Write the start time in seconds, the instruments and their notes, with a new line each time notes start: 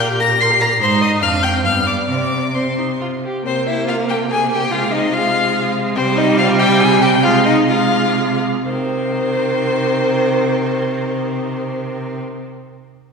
Already playing: cello A#2
0.00 viola A#4, violin G5
0.09 viola G4
0.19 viola A#4, violin A#5 A#6
0.30 viola G4
0.40 viola A#4, violin C6 C7
0.50 viola G4
0.60 viola A#4, violin A#5 A#6
0.71 viola G4
0.80 cello G#2, viola D#4, violin C5 C6
1.02 violin D#5 D#6
1.21 cello F2, viola D4, violin F5 F6
1.43 viola C4, violin G5 G6
1.64 cello G2, viola B3, violin F5 F6
1.87 violin D5 D6
2.09 cello C3, viola C4, violin D5 D6
2.55 viola C4, violin C5 C6
2.78 viola D#4
3.01 viola F4
3.23 viola G4
3.46 cello C3, viola A#3, violin C4 C5
3.67 violin E4 E5
3.88 violin F4 F5
4.09 violin G4 G5
4.30 violin G#4 G#5
4.51 violin G4 G5
4.71 viola G#3, violin F4 F5
4.92 violin D#4 D#5
5.13 viola G#3, violin F4 F5
5.96 cello C3, viola G3, violin C4 C5
6.16 violin D#4 D#5
6.38 violin F4 F5
6.59 violin G4 G5
6.80 violin G#4 G#5
7.01 violin G4 G5
7.23 viola G#3, violin F4 F5
7.45 violin D#4 D#5
7.68 viola G#3, violin F4 F5
8.65 cello C3, viola D#3, violin C4 C5